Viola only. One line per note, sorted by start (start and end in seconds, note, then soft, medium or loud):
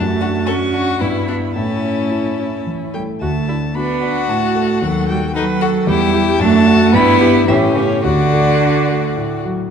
0.00 1.02 F#4 medium
1.01 1.55 E4 medium
1.56 2.99 E4 soft
3.22 3.30 F#4 medium
3.49 3.57 E4 medium
3.77 4.31 D4 medium
4.30 4.85 F#4 medium
4.83 5.35 A4 medium
5.35 5.63 B4 medium
5.61 5.89 A4 medium
5.88 6.41 G4 medium
6.41 6.93 F#4 medium
6.94 7.23 E4 medium
7.21 7.47 G4 medium
7.48 8.06 G4 medium
8.04 9.53 F#4 medium